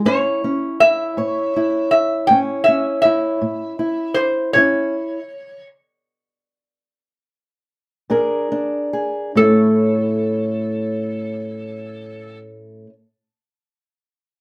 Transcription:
<<
  \new Staff \with { instrumentName = "Resonator guitar played with a steel bar" } { \time 12/8 \key a \major \tempo 4. = 50 cis''4 e''4. e''8 g''8 e''8 e''4. c''8 | cis''4. r1 r8 | a'1. | }
  \new Staff \with { instrumentName = "Steel-string acoustic guitar" } { \time 12/8 \key a \major << { <cis' e'>8 cis'8 e'8 cis''8 e'4 <cis' e' cis''>8 cis'8 e'4 e'4 | <cis' e'>4 r2. r8 <d' aes' bes'>8 d'8 aes'8 | <a cis' e' cis''>1. | } \\ { a,4 r8 a,4 r8 a,4 r8 a,4 r8 | a,4 r2. r8 bes,4 r8 | a,1. | } >> }
>>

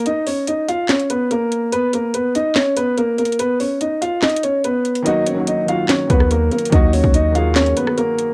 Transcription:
<<
  \new Staff \with { instrumentName = "Grand piano" } { \time 4/4 \key ees \minor \tempo 4 = 144 <ees' ees''>8 <des' des''>8 <ees' ees''>8 <f' f''>8 <des' des''>8 <ces' ces''>8 <bes bes'>4 | <ces' ces''>8 <bes bes'>8 <ces' ces''>8 <ees' ees''>8 <des' des''>8 <ces' ces''>8 <bes bes'>8 <bes bes'>8 | <ces' ces''>8 <des' des''>8 <ees' ees''>8 <f' f''>8 <ees' ees''>8 <des' des''>8 <ces' ces''>4 | <ees' ees''>8 <des' des''>8 <ees' ees''>8 <f' f''>8 <des' des''>8 <ces' ces''>8 <bes bes'>8 <bes bes'>8 |
<ees' ees''>8 <des' des''>8 <ees' ees''>8 <f' f''>8 <des' des''>8 <ces' ces''>8 <bes bes'>4 | }
  \new Staff \with { instrumentName = "Felt piano" } { \clef bass \time 4/4 \key ees \minor r1 | r1 | r1 | <ees ges bes ges'>8 r16 <ees ges bes ges'>8 r16 <ees ges bes ges'>8 r8 <ees ges bes ges'>4 r8 |
<ees ges bes ges'>4 r8 <ees ges bes aes'>4~ <ees ges bes aes'>16 r4 r16 | }
  \new Staff \with { instrumentName = "808-style bass" } { \clef bass \time 4/4 \key ees \minor r1 | r1 | r1 | r2 r8 ees,4 r8 |
ees,8. ees,4.~ ees,16 r4. | }
  \new DrumStaff \with { instrumentName = "Drums" } \drummode { \time 4/4 hh8 hho8 hh8 hh8 <hc hh sn>16 hh16 hh8 hh8 hh8 | hh8 hh8 hh8 hh8 <hc hh sn>8 hh8 \tuplet 3/2 { hh16 r16 r16 hh16 hh16 hh16 } | hh8 hho8 hh8 hh8 \tuplet 3/2 { <hc hh sn>16 hh16 hh16 hh16 r16 r16 } hh8 hh16 hh16 | hh8 hh8 hh8 hh8 <hc hh sn>8 <hh bd>16 ss16 \tuplet 3/2 { hh16 r16 r16 hh16 hh16 hh16 } |
<hh bd>8 hho16 bd16 hh8 hh8 <hc hh sn>16 hh16 hh16 ss16 hh8 hh8 | }
>>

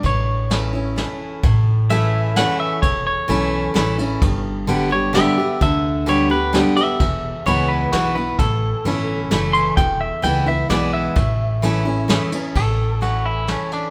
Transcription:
<<
  \new Staff \with { instrumentName = "Clean electric guitar" } { \time 3/4 \key a \mixolydian \tempo 4 = 130 cis''2~ cis''8 r8 | r4 e''4 fis''8 e''8 | cis''8 cis''2~ cis''8~ | cis''8 r4 cis''8 e''4 |
e''4 cis''8 b'8 r8 e''8~ | e''4 cis''8 b'8 fis'8 b'8 | a'2 r8 c'''8 | g''8 e''8 g''8 e''8 d''8 e''8~ |
e''2~ e''8 r8 | a'4 fis'8 e'8 cis'8 d'8 | }
  \new Staff \with { instrumentName = "Steel-string acoustic guitar" } { \time 3/4 \key a \mixolydian << { r4 <e a cis' e'>8 <cis' e'>8 <e a cis' e'>4 | r4 <e a cis' e'>4 <e a cis' e'>4 | r4 <e a cis' e'>4 <e a cis' e'>8 <cis' e'>8 | r4 <d g b g'>8 <b g'>8 <d g b g'>8 <b g'>8 |
r4 <d g b g'>8 <b g'>8 <d g b g'>8 <b g'>8 | r4 <e gis b e'>4 <e gis b e'>8 <b e'>8 | r4 <e a cis' e'>4 <e a cis' e'>4 | r4 <e gis b e'>8 <b e'>8 <e gis b e'>4 |
r4 <e a cis' e'>8 <cis' e'>8 <e a cis' e'>8 <cis' e'>8 | r4 <e a cis' e'>4 <e a cis' e'>4 | } \\ { a,2 r4 | a,2 r4 | e,2 r4 | g,2 r4 |
d2 r4 | e,2 r4 | a,2 r4 | e,2 r4 |
a,2 r4 | a,2 r4 | } >> }
  \new Staff \with { instrumentName = "Upright bass" } { \clef bass \time 3/4 \key a \mixolydian a,,2. | a,,2. | e,,4 b,,4 a,,4 | g,,2. |
d,2. | e,,4 cis,4 b,,4 | a,,4 g,,4 fis,,4 | e,,4 cis,4 b,,4 |
a,,2. | a,,2. | }
  \new DrumStaff \with { instrumentName = "Drums" } \drummode { \time 3/4 <bd cymr>4 <cymr sn>4 <cymr sn>4 | <bd cymr>4 cymr4 <cymr sn>4 | <bd cymr>4 cymr4 <cymr sn>8 cymr8 | <bd cymr>4 cymr4 <cymr sn>4 |
<bd cymr>4 cymr4 <cymr sn>8 cymr8 | <bd cymr>4 cymr4 <cymr sn>4 | <bd cymr>4 cymr4 <cymr sn>8 cymr8 | <bd cymr>4 cymr4 <cymr sn>4 |
<bd cymr>4 cymr4 <cymr sn>8 cymr8 | <cymc bd>4 cymr4 <cymr sn>8 cymr8 | }
>>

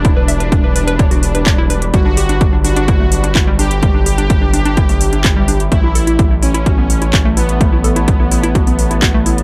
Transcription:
<<
  \new Staff \with { instrumentName = "Ambient pad" } { \time 4/4 \key g \lydian \tempo 4 = 127 << { <g b' b''>1~ | <g b' b''>1~ | <g b' b''>1 | <e' a' a''>1~ |
<e' a' a''>1 | } \\ { d''1~ | d''1 | e''1 | cis''1~ |
cis''1 | } >> }
  \new Staff \with { instrumentName = "Analog polysynth" } { \time 4/4 \key g \lydian d'1 | fis'4. fis'2 g'8~ | g'1 | e'4. cis'2 b8~ |
b1 | }
  \new Staff \with { instrumentName = "Synth arpeggio sound" } { \time 4/4 \key g \lydian e'16 b'16 e''16 b'16 r16 b'16 b'16 b'16 cis''16 fis'16 r16 b'16 cis''16 e'16 b'16 r16 | g16 d'16 g'16 d'16 r16 d'16 d'16 d'16 e'16 a16 r16 d'16 e'16 g16 d'16 r16 | g16 d'16 g'16 d'16 r16 d'16 d'16 d'16 e'16 a16 r16 d'16 e'16 g16 d'16 r16 | a16 e'16 a'16 e'16 r16 e'16 e'16 e'16 fis'16 b16 r16 e'16 fis'16 a16 e'16 r16 |
a16 e'16 a'16 e'16 r16 e'16 e'16 e'16 fis'16 b16 r16 e'16 fis'16 a16 e'16 r16 | }
  \new Staff \with { instrumentName = "Analog synth bass" } { \clef bass \time 4/4 \key g \lydian e,,1 | g,,1~ | g,,1 | a,,1~ |
a,,1 | }
  \new DrumStaff \with { instrumentName = "Drums" } \drummode { \time 4/4 <hh bd>8 hho16 hh16 <hh bd>8 hho16 hh16 <hh bd>16 hho16 hho16 hh16 <hc hh bd>8 hho16 hh16 | <hh bd>8 hho16 hh16 <hh bd>8 hho16 hh16 <hh bd>8 hho16 hh16 <hc hh bd>8 hho16 hh16 | <hh bd>8 hho16 hh16 <hh bd>8 hho16 hh16 <hh bd>16 hho16 hho16 hh16 <hc hh bd>8 hho16 hh16 | <hh bd>8 hho16 hh16 <hh bd>8 hho16 hh16 <hh bd>8 hho16 hh16 <hc hh bd>8 hho16 hh16 |
<hh bd>8 hho16 hh16 <hh bd>8 hho16 hh16 <hh bd>16 hho16 hho16 hh16 <hc hh bd>8 hho16 hh16 | }
>>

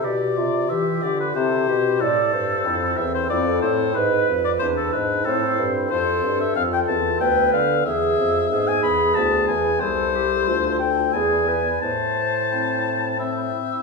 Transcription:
<<
  \new Staff \with { instrumentName = "Oboe" } { \time 3/4 \key a \minor \tempo 4 = 92 d''4 e''8 d''16 b'16 c''4 | a'4. e''16 c''16 d''8 c''8 | b'8. d''16 c''16 a'16 b'8 a'8. r16 | c''8. e''16 f''16 g''16 a''8 g''8 f''8 |
e''4~ e''16 gis''16 b''8 a''8 gis''8 | c''4. g''8 gis''4 | a''2 e''4 | }
  \new Staff \with { instrumentName = "Flute" } { \time 3/4 \key a \minor g'8 f'8 g'4 a'8 g'8 | d''8 c''4. a'4 | b'4. r8 c''4 | a'2 b'4 |
gis'4 gis'2 | a'8 g'8 f'8 a'8 gis'8 b'8 | c''2~ c''8 r8 | }
  \new Staff \with { instrumentName = "Pipe organ" } { \time 3/4 \key a \minor r4 <f' g'>4 <c' e' g'>4 | r4 <c' e' a'>4 <c' e' a'>4 | r4 <d' e'>4 <c' e' a'>4 | r4 <c' f' a'>4 <b a' b'>4 |
r4 <b gis' b'>4 <b e' b'>4 | <e' a'>4 <d' f' a'>4 <b e' d''>4 | r4 <c' e' c''>4 <c' e' c''>4 | }
  \new Staff \with { instrumentName = "Pipe organ" } { \clef bass \time 3/4 \key a \minor b,8 c8 e8 d8 c8 b,8 | a,8 g,8 f,8 e,8 f,8 a,8 | gis,8 f,8 e,8 gis,8 a,8 g,8 | f,8 g,8 f,8 e,8 d,8 d8 |
e,8 f,8 gis,8 e,8 d,8 e,8 | c,4 d,4 e,4 | a,2~ a,8 r8 | }
  \new Staff \with { instrumentName = "Bassoon" } { \clef bass \time 3/4 \key a \minor b,8 c8 e8 d8 c8 b,8 | a,8 g,8 f,8 e,8 f,8 a,8 | gis,8 f,8 e,8 gis,8 a,8 g,8 | f,8 g,8 f,8 e,8 d,8 d8 |
e,8 f,8 gis,8 e,8 d,8 e,8 | c,4 d,4 e,4 | a,2~ a,8 r8 | }
>>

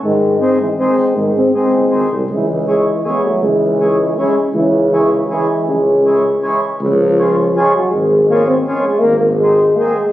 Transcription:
<<
  \new Staff \with { instrumentName = "Accordion" } { \clef bass \time 3/4 \key cis \minor \tempo 4 = 160 r4 <dis gis bis>8 r8 <dis gis bis>8 r8 | r4 <dis gis bis>8 r8 <dis gis bis>8 r8 | r4 <e gis cis'>8 r8 <e gis cis'>8 r8 | r4 <e gis cis'>8 r8 <e gis cis'>8 r8 |
r4 <e gis cis'>8 r8 <e gis cis'>8 r8 | r4 <e gis cis'>8 r8 <e gis cis'>8 r8 | \key des \major r4 <f aes des'>8 r8 <f aes des'>8 r8 | r4 <f aes des'>8 r8 <f aes des'>8 r8 |
r4 <ees aes c'>8 r8 <ees aes c'>8 r8 | }
  \new Staff \with { instrumentName = "Euphonium" } { \clef bass \time 3/4 \key cis \minor gis4 bis8 gis8 bis4 | gis8 bis8 bis4. r8 | gis8 gis8 gis4 b8 a8 | gis4 gis4 cis'8 r8 |
e4 e4 gis4 | cis'2 r4 | \key des \major f2 aes8 ges8 | aes4 bes8 c'8 des'16. bes32 aes8 |
bes8 bes8 aes4 bes8 aes8 | }
  \new Staff \with { instrumentName = "Euphonium" } { \clef bass \time 3/4 \key cis \minor dis4 gis8 e8 gis4 | dis8 gis8 gis4. r8 | e8 e8 e4 gis8 fis8 | e4 e4 gis8 r8 |
cis4 cis4 e4 | gis2 r4 | \key des \major r2. | r2. |
r2. | }
  \new Staff \with { instrumentName = "Tuba" } { \clef bass \time 3/4 \key cis \minor gis,2. | gis,4. fis,,8 gis,,8 bis,,8 | cis,2. | cis,2. |
cis,2. | cis,2. | \key des \major des,2. | aes,,2. |
aes,,2. | }
>>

